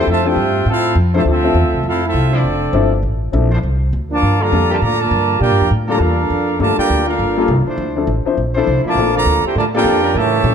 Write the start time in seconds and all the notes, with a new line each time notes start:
Already playing: F3 C4 D4 E4 A4
0.07 F2 C3 F3 A3 F4 C5 E5 A5
0.25 F3 A3 C4 D4 E4 F4 G4 A4 C5 E5 G5
0.36 G2
0.66 A2 A3 C4 E4 F4 F5
0.70 A4
0.96 F2
1.13 C3 F3 A3 C4 D4 E4 A4 C5
1.17 F4 C5 E5 A5
1.26 D2 A3 C4 F4
1.30 A4 E5
1.43 F3 C4 D4 E4 A4
1.54 E2
1.65 D2
1.74 C2
1.83 F2 A3 C4 F4
1.88 C4 E4 A4 F5
2.03 A3 C4 E4 F4 A4
2.07 E5
2.14 C2
2.31 F3 A3 D4 E4 C5
2.35 C4 F4 A4 D5
2.44 F1
2.73 G1 F3 C4 D4 E4 A4
3.03 A1
3.32 A#1 F3 C4 D4 E4 A4
3.51 F3 D4 E4 C5
3.63 C2
3.93 D2
4.10 F3 A#3 D4 A#4 F5 A5 D6
4.22 G2
4.40 D3 F3 G3 A#3 F4 A4 D5 A#5
4.52 F2 G3 A#3 D4 F4 A4
4.69 D3 F3 G3 A3 A#3 F4 G4 A#4 D5 A5
4.81 A2 D3 F3 A#3 F4 A4 D5 A#5
4.98 D3 F3 A#3 F4 A#4 D5 A5
5.11 G2
5.38 A#2 A#3 D4 F4 G4 A#4 D5 G5
5.51 G2
5.61 F2
5.71 A2
5.86 D3 F3 G3 A#3 F4 A4 D5 A#5
5.90 D4 F4 A4
5.98 E2 A#3 D4 F4 A4 A#4 F5
6.30 F2
6.58 G2 D3 F3 G3 A3 A#3 D4 F4 A4 A#4 D5 A5
6.76 A#3 D4 F4 G4 A#4 D5 G5, muted upright bass stroke
6.90 D2
7.06 A#3 D4 F4 A4 A#4 F5
7.19 G1
7.37 G3 A#3 D4 F4 A4
7.48 C2
7.66 F3 D4 E4 C5, muted upright bass stroke
7.78 D2
7.96 F3 C4 D4 E4 A4
8.07 A1
8.26 F3 C4 D4 E4 C5, muted upright bass stroke
8.37 A#1
8.54 F3 C4 D4 E4 A4 C5
8.67 C2
8.84 F3 A3 A#3 D4 E4 A#4 F5 A5 D6, muted upright bass stroke
8.95 A#1 F3 A#3 C4 D4
8.99 A4
9.14 D3 F3 A#3 F4 A4 D5 A#5
9.26 D2
9.44 E4 G4 A4 C5 G5, muted upright bass stroke
9.55 A2 D3 F3 A3 F4 A#4 D5 A5
9.73 F3 A#3 C4 D4 F4 G4 A4 A#4 D5 G5
9.84 F2
10.02 G3 A#3 C#4 A#4
10.15 A2 C#3 E3 A3 G4 C#5 E5 A5
10.44 A#2 G3 A#3 C#4 E4 A4